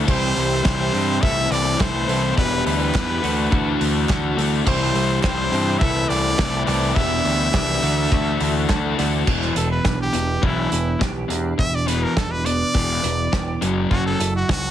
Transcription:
Already playing: E6
0.05 C2 C3 E3 G3 C4 E4 G4 E5 G5, kick, crash
0.10 C5
0.36 C2, open hi-hat
0.63 C2 C3 E3 G3 C4 E4 G4 C5, kick, snare, clap
0.92 G2 C3 E3 G3 C4 E4 G4, open hi-hat
1.21 C2 C3 E3 A3 C4 E4 A4 B4 E5 A5 B5, kick
1.51 C2 D5, open hi-hat
1.77 C2 C3 E3 A3 C4 E4 A4 C5, kick, snare, clap
1.82 B4
2.07 C2 C3 E3 A3 C4 E4 A4 B4, open hi-hat
2.35 E1 E2 B2 E3 G3 B3 D4 E4 G4 B4 D5 G5, kick
2.66 D2 B4, open hi-hat
2.93 E2 B2 E3 G3 B3 D4 E4 G4, kick, snare, clap
3.21 D2 D3 E3 A3 D4 F#4 D5 F#5 A5, open hi-hat
3.50 D2 D3 E3 A3 D4 F#4, kick
3.81 D2, open hi-hat
4.08 D2 D3 E3 A3 D4 F#4, kick, snare, clap
4.37 D2 D3 E3 A3 D4 F#4, snare, open hi-hat
4.65 C2 C3 E3 G3 C4 E4 G4 C5 E5 G5 E6, kick, crash
4.95 C2, open hi-hat
5.22 C2 C3 E3 G3 C4 E4 G4 C5, kick, snare, clap
5.51 G2 C3 E3 G3 C4 E4 G4, open hi-hat
5.79 C2 C3 E3 A3 C4 E4 A4 E5 A5 B5, kick
5.83 B4
6.09 C2 D5, open hi-hat
6.38 C2 C3 E3 A3 C4 E4 A4 B4, kick, snare, clap
6.66 C2 C3 E3 A3 C4 E4 A4 B4 D5, snare, open hi-hat
6.93 E1 E2 B2 E3 G3 B3 D4 E4 G4 D5 E5 G5 B5 E6, kick
7.25 D2, open hi-hat
7.53 C2 E2 B2 E3 G3 B3 D4 E4 G4, kick, snare, clap
7.82 D2 D3 E3 A3 D4 F#4 F#5 A5, open hi-hat
8.11 D2 D3 E3 A3 D4 F#4, kick
8.40 D2, open hi-hat
8.69 D2 D3 E3 A3 D4 F#4, kick, snare, clap
8.98 D2 D3 E3 A3 D4 F#4, snare, open hi-hat
9.26 E1 E2 B2 E3, kick, crash
9.42 snare
9.55 E1 E2 B2 B3 A4, closed hi-hat
9.72 B4
9.84 B1 E2 B2 D4, kick, snare
10.02 G4
10.13 E1 E2 B2 B3, closed hi-hat
10.42 B1 E2 B2 E3 E4, kick
10.70 E1 E2 B2 B3, closed hi-hat
10.99 B1 E2 B2 G4, kick, snare
11.28 E2 B2 D4, closed hi-hat
11.58 E1 E2 B2 E3 E5, kick
11.75 D5
11.86 E2 B2 E3 B3 B4, closed hi-hat
12.03 A#4
12.15 E1 E2 B2 D4 A4, kick, snare
12.32 B4
12.45 E2 B2 B3 D5, closed hi-hat
12.74 E1 E2 B2 E3, kick
13.03 E1 E2 B2 B3, closed hi-hat
13.32 E1 E2 B2 G4, kick, snare
13.61 F#1 F#2 C#3 F#3, closed hi-hat
13.90 F#1 F#2 C#3 F#3 F#4, kick
14.06 A4
14.20 F#1 F#2 C#3 E4, closed hi-hat
14.36 F#4
14.49 C#2 F#2 C#3 F#4, kick, snare

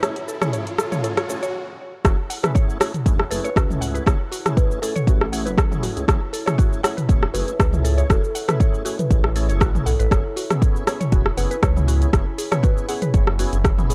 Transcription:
Already playing: F#4 C#5 G#5, riser
0.03 A3 C#4 E4 G#4 C#5, cross-stick, closed hi-hat, shaker
0.16 closed hi-hat
0.28 A4, shaker
0.42 A3 C#4 E4 G#4 C#5, cross-stick, closed hi-hat, mid tom, shaker
0.53 A3 C#4 E4 G#4 C#5, closed hi-hat, shaker
0.67 closed hi-hat
0.78 A4, cross-stick, shaker
0.92 A3 C#4 E4 G#4 C#5, closed hi-hat, mid tom, shaker
1.04 A3 C#4 E4 G#4 A4 C#5, closed hi-hat, shaker
1.17 C#5, cross-stick, closed hi-hat
1.29 A3 C#4 E4 G#4 A4 C#5, shaker
1.43 C#5, closed hi-hat, shaker
2.05 F#1 A3 C#4 E4 F#4 G#4 C#5 F#5, kick, cross-stick, closed hi-hat, shaker
2.30 F#5, open hi-hat, shaker
2.43 A3 C#4 E4 G#4 B4, cross-stick, closed hi-hat, mid tom, shaker
2.55 C#5, kick, closed hi-hat, shaker
2.70 shaker
2.80 A3 C#4 E4 F#4 G#4 C#5, cross-stick, open hi-hat, shaker
2.94 closed hi-hat, mid tom, shaker
3.06 E1 A3 C#4 E4 G#4, kick, closed hi-hat, shaker
3.20 cross-stick
3.31 F#1 A3 C#4 E4 G#4 A4 B4, open hi-hat, shaker
3.44 B4 C#5, closed hi-hat, shaker
3.56 C#2 F#4, kick, cross-stick, closed hi-hat, shaker
3.70 A3 C#4 E4 G#4, mid tom, shaker
3.81 F#5, open hi-hat, shaker
3.95 B4, closed hi-hat, shaker
4.06 F#1 A3 C#4 E4 G#4 C#5, kick, cross-stick, closed hi-hat, shaker
4.32 F#4, open hi-hat, shaker
4.45 A3 C#4 E4 G#4, cross-stick, closed hi-hat, mid tom, shaker
4.57 B4, kick, closed hi-hat, shaker
4.71 shaker
4.82 A3 C#4 E4 G#4 A4, open hi-hat, shaker
4.96 C#5, closed hi-hat, mid tom, shaker
5.07 A1 A3 C#4 E4 F#4 G#4, kick, closed hi-hat, shaker
5.21 cross-stick
5.32 A3 C#4 E4 G#4 F#5, open hi-hat, shaker
5.46 F#1 B4, closed hi-hat, shaker
5.58 C#5, kick, cross-stick, closed hi-hat, shaker
5.71 A3 C#4 E4 G#4, mid tom, shaker
5.83 F#4, open hi-hat, shaker
5.96 C#2, closed hi-hat, shaker
6.08 F#1 A3 C#4 E4 G#4 E5, kick, cross-stick, closed hi-hat, shaker
6.33 A4, open hi-hat, shaker
6.46 A3 C#4 E4 G#4 C#5, cross-stick, closed hi-hat, mid tom, shaker
6.58 F#4, kick, closed hi-hat, shaker
6.73 shaker
6.83 A3 C#4 E4 G#4 C#5 F#5, cross-stick, open hi-hat, shaker
6.97 B4, closed hi-hat, mid tom, shaker
7.09 E1 A3 C#4 E4 G#4 C#5, kick, closed hi-hat, shaker
7.23 cross-stick
7.34 F#1 A3 C#4 E4 F#4 G#4 B4, open hi-hat, shaker
7.48 B4, closed hi-hat, shaker
7.60 C#2, kick, cross-stick, closed hi-hat, shaker
7.73 A3 C#4 E4 G#4, mid tom, shaker
7.84 A4, open hi-hat, shaker
7.98 C#5, closed hi-hat, shaker
8.10 F#1 A3 C#4 E4 F#4 G#4 A4, kick, cross-stick, closed hi-hat, shaker
8.23 A4, shaker
8.35 F#5, open hi-hat, shaker
8.48 A3 C#4 E4 G#4 B4, cross-stick, closed hi-hat, mid tom, shaker
8.60 C#5, kick, closed hi-hat, shaker
8.74 shaker
8.85 A3 C#4 E4 F#4 G#4, open hi-hat, shaker
8.99 B4, closed hi-hat, mid tom, shaker
9.11 A1 A3 C#4 E4 G#4, kick, closed hi-hat, shaker
9.24 cross-stick
9.36 A3 C#4 E4 G#4 A4, open hi-hat, shaker
9.49 F#1 C#5, closed hi-hat, shaker
9.60 A1 F#4, kick, cross-stick, closed hi-hat, shaker
9.75 A3 C#4 E4 G#4, mid tom, shaker
9.86 B1 A4 F#5, open hi-hat, shaker
9.99 A1 A4 B4, closed hi-hat, shaker
10.11 F#1 B3 C#4 E4 G#4 C#5 G#5 B5, kick, cross-stick, closed hi-hat, shaker
10.36 F#4, open hi-hat, shaker
10.50 B3 C#4 E4 G#4, cross-stick, closed hi-hat, mid tom, shaker
10.62 kick, closed hi-hat, shaker
10.76 shaker
10.87 B3 C#4 E4 G#4 C#5, cross-stick, open hi-hat, shaker
11.01 C#5, closed hi-hat, mid tom, shaker
11.12 E1 B3 C#4 E4 F#4 G#4, kick, closed hi-hat, shaker
11.26 cross-stick
11.37 F#1 B3 C#4 E4 G#4 B4 F#5, open hi-hat, shaker
11.51 B4, closed hi-hat, shaker
11.63 C#2 C#5, kick, cross-stick, closed hi-hat, shaker
11.76 B3 C#4 E4 G#4, mid tom, shaker
11.88 F#4, open hi-hat, shaker
12.02 closed hi-hat, shaker
12.13 F#1 B3 C#4 E4 G#4, kick, cross-stick, closed hi-hat, shaker
12.38 G#4, open hi-hat, shaker
12.52 B3 C#4 E4 G#4 C#5, cross-stick, closed hi-hat, mid tom, shaker
12.63 F#4 B4, kick, closed hi-hat, shaker
12.78 shaker
12.88 B3 C#4 E4 G#4 F#5, open hi-hat, shaker
13.02 B4, closed hi-hat, mid tom, shaker
13.14 F#1 B3 C#4 E4 G#4 C#5, kick, closed hi-hat, shaker
13.27 cross-stick
13.39 B3 C#4 E4 F#4 G#4, open hi-hat, shaker
13.53 F#1, closed hi-hat, shaker
13.64 kick, cross-stick, closed hi-hat, shaker
13.78 B3 C#4 E4 G#4, mid tom, shaker
13.90 G#4, open hi-hat, shaker

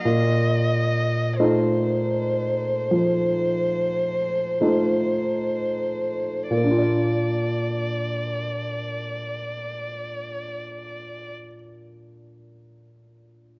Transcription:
0.02 A#2 D#5
1.37 A3 D#4 F4 C5
2.91 F3
4.61 A3 D#4 F4
6.51 A#2 D5
6.57 A#3
6.64 D4
6.71 F4
6.78 D5

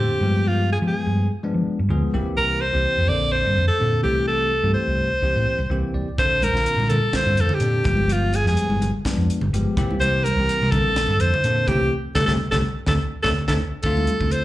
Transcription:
Already playing: G4
0.00 D3 A#3 C4 C5
0.20 G2 F3 G#3 B3 G4
0.48 F4
0.72 G#4
0.82 F3 G#3 B3 G#4
0.87 G#4
1.06 G2
1.43 F3 G#3 B3 D4
1.54 F3
1.66 muted fingered electric bass stroke
1.79 G2
1.89 D2 F3 G#3 B3 G#4
2.13 C2 E3 A#3 C4 G4
2.25 muted fingered electric bass stroke
2.37 C2 A#4
2.61 C5
2.73 C2 E3 A#3 C4 G4
2.98 F2
3.08 A#1 D3 A#3 C4 A4 D5
3.32 C5
3.46 G2
3.58 F2
3.68 A4, muted fingered electric bass stroke
3.80 A#2 D3 A#3 C4 A4
4.03 C2 E3 A3 C4 G4
4.28 A4
4.63 G2 E3 A3 C4 G4
4.74 C5
4.87 C2
5.22 C2 E3 A#3 C4 G4
5.35 A2
5.47 muted fingered electric bass stroke
5.58 C2
5.70 C2 E3 A#3 C4 G4 G5
5.94 C2 D5
6.06 muted fingered electric bass stroke
6.18 A#1 D3 A#3 C4 A4 C5, kick, closed hi-hat
6.42 A#4, closed hi-hat, high conga
6.53 A#1 D3 A#3 C4 F4, snare
6.66 closed hi-hat
6.77 A#2, high conga
6.90 A4, closed hi-hat, low conga
7.13 D3 A#3 C4 F4 C5, kick, snare, closed hi-hat, high conga
7.26 G2
7.37 F2 A4, closed hi-hat
7.49 muted fingered electric bass stroke, low conga
7.54 G4
7.60 A#2 D3 A#3 C4 D4, closed hi-hat
7.84 G1 F3 G#3 B3 G4, kick, closed hi-hat, low conga
7.97 high conga
8.09 F4, closed hi-hat
8.33 G#4, closed hi-hat, high conga
8.44 F2 F3 G3 G#3 B3 G#4, snare
8.57 closed hi-hat
8.69 G1, high conga
8.82 closed hi-hat, low conga
9.05 F3 G#3 B3 D4, kick, snare, closed hi-hat, high conga
9.17 F2
9.29 muted fingered electric bass stroke, closed hi-hat
9.41 G1, low conga
9.53 G1 F3 G#3 B3 G4, closed hi-hat
9.77 C2 E3 A#3 C4 G4, kick, closed hi-hat, low conga
9.91 high conga
10.00 C2 C5, closed hi-hat
10.24 A#4, closed hi-hat, high conga
10.37 C2 E3 A#3 C4 G4
10.49 closed hi-hat
10.62 C3, high conga
10.71 A#1 D3 A#3 C4 A4, kick, closed hi-hat, low conga
10.96 snare, closed hi-hat, high conga
11.08 G2
11.20 F2 C5, closed hi-hat
11.34 muted fingered electric bass stroke, low conga
11.44 A#2 D3 A#3 C4 A4, closed hi-hat
11.67 C2 E3 A3 C4 G4, kick, closed hi-hat, low conga
12.15 C2 G3 A3 C4 A4, kick, snare, low conga
12.26 C2 G3 A3 C4 A4, kick, snare, low conga
12.51 C2 G3 A3 C4 A4, kick, snare, low conga
12.86 D2 A3 C4 D4 A4, kick, snare, low conga
13.23 D2 A3 C4 D4 A4, kick, snare, low conga
13.48 D2 A3 C4 D4 A4, kick, snare, low conga
13.83 D2 D3 A3 C4 F4 A4, kick, closed hi-hat
13.97 high conga
14.07 closed hi-hat
14.20 D2 D3 A3 C4 F4, kick, low conga
14.31 C5, closed hi-hat

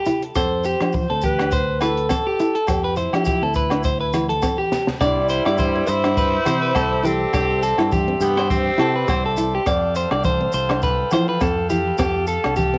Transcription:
Already playing: G4
0.05 E4, closed hi-hat, low conga, maracas
0.22 closed hi-hat
0.35 F2 C4 A4 C5, kick, cross-stick, closed hi-hat, muted conga, low agogo, maracas
0.64 G4 C5, closed hi-hat, maracas
0.81 F3 D4, cross-stick, closed hi-hat, low agogo
0.93 muted clean electric guitar stroke, kick, closed hi-hat, muted conga, high conga, maracas
1.10 D2 C4 A4
1.21 G4 B4, kick, closed hi-hat, high conga, maracas
1.39 D4, cross-stick, closed hi-hat, low agogo
1.51 C5, kick, closed hi-hat, muted conga, maracas
1.81 E4 A4 B4, cross-stick, closed hi-hat, muted conga, low agogo, maracas
1.97 closed hi-hat
2.09 C4 A4, kick, cross-stick, closed hi-hat, high conga, low agogo, maracas
2.27 G4
2.40 E4, closed hi-hat, maracas
2.55 A4, closed hi-hat
2.67 F2 C4 G4, kick, cross-stick, closed hi-hat, low agogo, maracas
2.84 B4
2.96 E4 C5, closed hi-hat, low conga, maracas
3.13 F3 D4 G4, cross-stick, closed hi-hat, low agogo
3.25 G4, kick, closed hi-hat, muted conga, high conga, maracas
3.42 D2 C4 A4
3.54 B4, kick, closed hi-hat, maracas
3.70 D4, cross-stick, closed hi-hat, low agogo
3.83 C5, kick, closed hi-hat, muted conga, maracas
4.01 B4
4.13 E4, cross-stick, closed hi-hat, muted conga, high conga, low agogo, maracas
4.29 A4, closed hi-hat, high conga
4.42 C4, kick, cross-stick, closed hi-hat, high conga, low agogo, maracas
4.58 G4, high conga
4.72 muted steel-string acoustic guitar stroke, snare, low conga, maracas
4.87 snare, low conga
5.00 C2 G3 D4 E4 C5 D5 E5, kick, cross-stick, muted conga, low agogo, maracas
5.29 C5, closed hi-hat, muted conga, maracas
5.45 G2 E4 D5, cross-stick, low agogo
5.58 C5, kick, high conga, maracas
5.76 C4
5.87 G2 E4 C5, closed hi-hat, maracas
6.04 D4, cross-stick, low agogo
6.17 B4, kick, muted conga, maracas
6.45 C3 E4 C5, cross-stick, closed hi-hat, high conga, low agogo, maracas
6.62 B4, maracas
6.75 C2 C4 A4, kick, cross-stick, low agogo, maracas
7.03 C4 E4 G4 A4, closed hi-hat, muted conga, high conga, maracas
7.33 C2 D4 G4, kick, cross-stick, muted conga, low agogo, maracas
7.62 A4, closed hi-hat, muted conga, maracas
7.78 G2 E4, cross-stick, low agogo
7.92 G4, kick, high conga, maracas
8.08 C4
8.20 G2 B3 G4, closed hi-hat, low conga, maracas
8.37 D4 C5, cross-stick, low agogo
8.50 C4 G4, kick, muted conga, high conga, maracas
8.78 C3 E4 A4, cross-stick, closed hi-hat, low agogo
8.95 B4, maracas
9.08 C2 C4 C5, kick, cross-stick, high conga, low conga, low agogo, maracas
9.26 A4
9.37 E4, closed hi-hat, muted conga, maracas
9.55 G4
9.66 F2 C4 A4 D5 F5 G5, kick, cross-stick, muted conga, low agogo, maracas
9.95 C5, closed hi-hat, muted conga, maracas
10.11 C2 D4 D5, cross-stick, low agogo
10.24 C5, kick, high conga, maracas
10.41 C4
10.52 C2 C5, closed hi-hat, maracas
10.69 D4, cross-stick, low agogo
10.82 B4, kick, muted conga, maracas
11.11 F3 E4 C5, cross-stick, closed hi-hat, high conga, low agogo, maracas
11.28 B4, maracas
11.40 F2 C4 A4, kick, cross-stick, low agogo, maracas
11.70 E4 G4, closed hi-hat, muted conga, high conga, maracas
11.98 F2 C4 G4 A5, kick, cross-stick, low agogo, maracas
12.27 A4, closed hi-hat, muted conga, maracas
12.44 C2 D4, cross-stick, low agogo
12.56 G4, kick, high conga, maracas
12.74 C4

